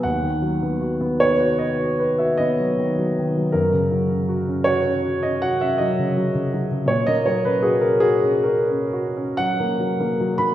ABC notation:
X:1
M:9/8
L:1/16
Q:3/8=52
K:F#mix
V:1 name="Grand piano"
f6 c2 d3 e d6 | A6 c3 d f e d6 | c d c B G A G2 A4 f4- f b |]
V:2 name="Grand piano"
D,, D, F, B, F B, B F B F B F B, F, D, F, D, F, | F,, C, F, C F C F C F C F C F, C, F, C, F, C, | A,, A, F, C F C F C F C F C F, A, F, A, F, A, |]